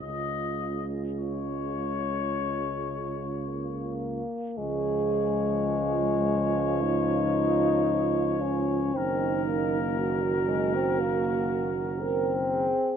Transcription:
X:1
M:4/4
L:1/16
Q:1/4=55
K:Db
V:1 name="Cornet"
e3 z d8- d2 z2 | d16 | B12- B3 z |]
V:2 name="French horn section"
F12- F2 z2 | A4 F12 | E4 G8 B2 A2 |]
V:3 name="Euphonium"
A,12 B,4 | A,8 E6 D2 | C2 B,3 G, A, C B,3 z C4 |]
V:4 name="Trombone" clef=bass
D,12- D,2 z2 | F,16 | E,12- E,3 z |]
V:5 name="Tuba" clef=bass
D,,12- D,,2 z2 | D,,16 | G,,,12- G,,,3 z |]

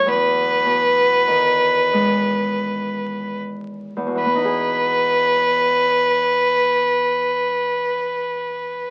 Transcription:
X:1
M:3/4
L:1/8
Q:1/4=38
K:E
V:1 name="Fiddle"
B4- B z | B6 |]
V:2 name="Harp" clef=bass
E,, B,, D, G,3 | [E,,B,,E,B,DG]6 |]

